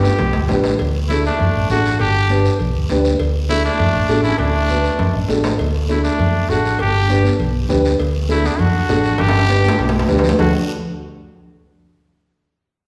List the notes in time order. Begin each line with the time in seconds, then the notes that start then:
Already playing: D4 G4 B4
0.03 low timbale, short guiro
0.19 B1, cowbell, high conga, low conga, low timbale, long guiro
0.33 D2, low timbale
0.49 A1 D4 G4 B4, high conga, low conga, low timbale, short guiro
0.64 low timbale, short guiro
0.79 D2, cowbell, high conga, long guiro
1.09 A3 D4 E4 F#4 A4, high conga, short guiro
1.25 A3 D4, short guiro
1.39 F#2, cowbell, high conga, low conga, long guiro
1.56 A1
1.70 A1 D4 F#4 A4, high conga, short guiro
1.85 short guiro
2.00 G1 D4 G4, cowbell, high conga, long guiro
2.30 D4 G4 B4, high conga, short guiro
2.45 short guiro
2.59 B1, cowbell, high conga, low conga, long guiro
2.75 D2
2.89 D2 D4 G4 B4, high conga, low timbale, short guiro
3.05 short guiro
3.19 D2, cowbell, high conga, long guiro
3.49 A3 D4 E4 F#4 A4, high conga, short guiro
3.65 A3 D4, short guiro
3.79 F#2, cowbell, high conga, low conga, long guiro
3.95 A1
4.09 A1 D4 F#4 A4, high conga, short guiro
4.23 C#4 E4, short guiro
4.38 D2 A3 D4, cowbell, high conga, long guiro
4.69 D4 F#4 B4, high conga, short guiro
4.84 short guiro
4.99 F#2, cowbell, high conga, low conga, high timbale, long guiro
5.15 A1
5.28 A1 D4 F#4 A4, high conga, low timbale, short guiro
5.44 low timbale, short guiro
5.59 D2, cowbell, long guiro
5.89 A3 D4 E4 F#4 A4, high conga, short guiro
6.03 A3 D4, short guiro
6.19 F#2, cowbell, low conga, long guiro
6.49 A1 D4 F#4 A4, high conga, short guiro
6.65 short guiro
6.79 G1 D4 G4, cowbell, long guiro
7.09 D4 G4 B4, high conga, short guiro
7.24 high conga, short guiro
7.39 B1, cowbell, low conga, long guiro
7.69 D2 D4 G4 B4, high conga, low conga, low timbale, short guiro
7.85 short guiro
8.00 D2, cowbell, long guiro
8.29 A3 D4 E4 F#4 A4, high conga, short guiro
8.44 B3 D4, high conga, short guiro
8.59 F#2 D4 F#4, cowbell, low conga, long guiro
8.89 A1 D4 F#4 A4, high conga, low timbale, short guiro
9.04 short guiro
9.18 G1 D4 G4, cowbell, low conga, high timbale, long guiro
9.29 high timbale
9.39 high timbale
9.48 D4 G4 B4, high conga, short guiro
9.64 high conga, short guiro
9.68 low timbale
9.79 B1, cowbell, high conga, low timbale, long guiro
9.89 low timbale
9.99 low timbale
10.08 D2 D4 G4 B4, low conga, low timbale, short guiro
10.19 low timbale
10.23 low conga, short guiro
10.29 low timbale
10.39 D2 D4 F#4 A4, low conga, low timbale, long guiro